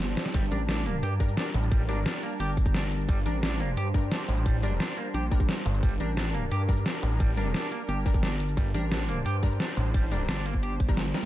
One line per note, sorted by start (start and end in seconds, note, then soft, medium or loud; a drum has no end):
0.00 0.16 G1 loud
0.00 11.26 G3 medium
0.00 11.26 D4 medium
0.00 0.33 C5 loud
0.00 11.26 A5 medium
0.00 snare medium
0.00 closed hi-hat loud
0.00 cabasa medium
0.17 snare loud
0.17 closed hi-hat medium
0.17 cabasa soft
0.26 snare medium
0.26 cabasa medium
0.34 0.50 G1 loud
0.34 0.44 G3 loud
0.34 3.08 A#4 loud
0.34 kick loud
0.34 closed hi-hat loud
0.34 cabasa medium
0.51 1.01 A1 loud
0.51 1.18 G3 medium
0.51 1.18 D4 medium
0.51 0.61 D4 medium
0.51 1.18 A#4 medium
0.51 closed hi-hat medium
0.69 0.83 D4 medium
0.69 snare loud
0.69 closed hi-hat loud
0.69 cabasa medium
0.77 cabasa soft
0.86 0.96 A#3 medium
0.86 closed hi-hat medium
1.03 1.36 G2 loud
1.03 1.13 G4 loud
1.03 closed hi-hat medium
1.03 cabasa medium
1.20 1.87 G3 medium
1.20 1.87 D4 medium
1.20 1.87 A#4 medium
1.20 kick loud
1.20 closed hi-hat medium
1.29 cabasa medium
1.37 1.47 D4 medium
1.37 snare loud
1.37 closed hi-hat loud
1.37 cabasa medium
1.54 2.04 A1 medium
1.54 closed hi-hat medium
1.54 cabasa soft
1.63 cabasa medium
1.72 1.81 G3 loud
1.72 kick loud
1.72 closed hi-hat loud
1.72 cabasa medium
1.89 2.55 G3 medium
1.89 2.55 D4 medium
1.89 1.98 D4 medium
1.89 2.55 A#4 medium
1.89 closed hi-hat medium
2.06 2.21 D4 medium
2.06 snare loud
2.06 closed hi-hat loud
2.06 cabasa medium
2.14 cabasa soft
2.23 2.33 A#3 medium
2.23 closed hi-hat medium
2.40 3.07 G1 loud
2.40 2.50 G4 loud
2.40 closed hi-hat loud
2.40 cabasa soft
2.57 kick loud
2.57 closed hi-hat medium
2.57 cabasa soft
2.66 kick loud
2.66 cabasa medium
2.74 2.84 D4 medium
2.74 snare loud
2.74 closed hi-hat loud
2.74 cabasa medium
2.92 closed hi-hat medium
2.92 cabasa soft
3.00 cabasa medium
3.09 3.24 G1 loud
3.09 3.18 G3 loud
3.09 5.82 C5 loud
3.09 kick loud
3.09 closed hi-hat loud
3.09 cabasa medium
3.26 3.76 A1 loud
3.26 3.92 G3 medium
3.26 3.36 D4 medium
3.26 3.92 D4 medium
3.26 3.92 A#4 medium
3.26 closed hi-hat medium
3.43 3.58 D4 medium
3.43 snare loud
3.43 closed hi-hat medium
3.43 cabasa medium
3.52 cabasa soft
3.60 3.70 A#3 medium
3.60 closed hi-hat medium
3.77 4.10 G2 loud
3.77 3.87 G4 loud
3.77 closed hi-hat loud
3.77 cabasa soft
3.94 4.61 G3 medium
3.94 4.61 D4 medium
3.94 4.61 A#4 medium
3.94 kick loud
3.94 closed hi-hat medium
4.03 cabasa medium
4.12 4.21 D4 medium
4.12 snare loud
4.12 closed hi-hat medium
4.12 cabasa soft
4.29 4.79 A1 loud
4.29 closed hi-hat medium
4.29 cabasa soft
4.37 cabasa medium
4.46 4.56 G3 loud
4.46 kick loud
4.46 closed hi-hat loud
4.46 cabasa medium
4.63 5.29 G3 medium
4.63 5.29 D4 medium
4.63 4.73 D4 medium
4.63 5.29 A#4 medium
4.63 closed hi-hat medium
4.80 4.95 D4 medium
4.80 snare loud
4.80 closed hi-hat medium
4.80 cabasa soft
4.89 cabasa soft
4.97 5.07 A#3 medium
4.97 closed hi-hat medium
5.14 5.47 A#1 loud
5.14 5.24 G4 loud
5.14 closed hi-hat medium
5.14 cabasa soft
5.31 5.98 G3 medium
5.31 5.98 D4 medium
5.31 5.98 A#4 medium
5.31 kick loud
5.31 closed hi-hat medium
5.31 cabasa soft
5.40 kick loud
5.40 cabasa medium
5.49 snare loud
5.49 closed hi-hat medium
5.49 cabasa soft
5.66 5.82 G1 loud
5.66 closed hi-hat medium
5.66 cabasa soft
5.74 cabasa medium
5.83 5.99 G1 loud
5.83 5.93 G3 loud
5.83 8.56 A#4 loud
5.83 kick loud
5.83 closed hi-hat medium
5.83 cabasa soft
6.00 6.50 A1 loud
6.00 6.67 G3 medium
6.00 6.67 D4 medium
6.00 6.10 D4 medium
6.00 6.67 A#4 medium
6.00 closed hi-hat medium
6.17 6.32 D4 medium
6.17 snare loud
6.17 closed hi-hat medium
6.17 cabasa medium
6.26 cabasa soft
6.34 6.44 A#3 medium
6.34 closed hi-hat medium
6.51 6.84 G2 loud
6.51 6.61 G4 loud
6.51 closed hi-hat medium
6.51 cabasa soft
6.69 7.35 G3 medium
6.69 7.35 D4 medium
6.69 7.35 A#4 medium
6.69 kick loud
6.69 closed hi-hat medium
6.77 cabasa medium
6.86 6.96 D4 medium
6.86 snare loud
6.86 closed hi-hat loud
6.86 cabasa medium
7.03 7.53 A1 medium
7.03 closed hi-hat medium
7.03 cabasa soft
7.12 cabasa medium
7.20 7.30 G3 loud
7.20 kick loud
7.20 closed hi-hat medium
7.20 cabasa medium
7.37 8.04 G3 medium
7.37 8.04 D4 medium
7.37 7.47 D4 medium
7.37 8.04 A#4 medium
7.37 closed hi-hat medium
7.54 7.69 D4 medium
7.54 snare loud
7.54 closed hi-hat medium
7.54 cabasa medium
7.63 cabasa soft
7.72 7.81 A#3 medium
7.72 closed hi-hat medium
7.89 8.56 G1 loud
7.89 7.98 G4 loud
7.89 closed hi-hat medium
7.89 cabasa soft
8.06 8.72 G3 medium
8.06 8.72 D4 medium
8.06 8.72 A#4 medium
8.06 kick loud
8.06 closed hi-hat medium
8.06 cabasa soft
8.14 kick loud
8.14 cabasa medium
8.23 8.33 D4 medium
8.23 snare loud
8.23 closed hi-hat medium
8.23 cabasa medium
8.40 closed hi-hat medium
8.40 cabasa soft
8.49 cabasa medium
8.57 8.73 G1 loud
8.57 8.67 G3 loud
8.57 11.26 C5 loud
8.57 kick loud
8.57 closed hi-hat medium
8.57 cabasa medium
8.74 9.24 A1 loud
8.74 9.41 G3 medium
8.74 9.41 D4 medium
8.74 8.84 D4 medium
8.74 9.41 A#4 medium
8.74 closed hi-hat medium
8.91 9.06 D4 medium
8.91 snare loud
8.91 closed hi-hat medium
8.91 cabasa medium
9.00 cabasa soft
9.09 9.18 A#3 medium
9.09 closed hi-hat medium
9.26 9.59 G2 loud
9.26 9.36 G4 loud
9.26 closed hi-hat medium
9.26 cabasa soft
9.43 10.09 G3 medium
9.43 10.09 D4 medium
9.43 10.09 A#4 medium
9.43 kick loud
9.43 closed hi-hat medium
9.51 cabasa medium
9.60 9.70 D4 medium
9.60 snare loud
9.60 closed hi-hat medium
9.60 cabasa medium
9.77 10.27 A1 medium
9.77 closed hi-hat medium
9.77 cabasa soft
9.86 cabasa medium
9.94 10.04 G3 loud
9.94 kick loud
9.94 closed hi-hat loud
9.94 cabasa medium
10.11 10.78 G3 medium
10.11 10.78 D4 medium
10.11 10.21 D4 medium
10.11 10.78 A#4 medium
10.11 closed hi-hat medium
10.29 10.79 G1 medium
10.29 10.43 D4 medium
10.29 snare loud
10.29 closed hi-hat medium
10.29 cabasa medium
10.37 cabasa soft
10.46 10.56 A#3 medium
10.46 closed hi-hat medium
10.46 cabasa soft
10.54 kick medium
10.63 10.73 G4 loud
10.63 closed hi-hat medium
10.63 cabasa soft
10.80 11.13 G1 loud
10.80 kick loud
10.80 closed hi-hat medium
10.89 10.95 G3 medium
10.89 10.95 D4 medium
10.89 10.95 A#4 loud
10.89 kick loud
10.89 cabasa medium
10.97 snare loud
10.97 closed hi-hat loud
10.97 cabasa medium
11.06 snare medium
11.14 11.21 G3 loud
11.14 11.21 D4 medium
11.14 11.21 A#4 loud
11.14 snare medium
11.14 closed hi-hat medium
11.14 cabasa soft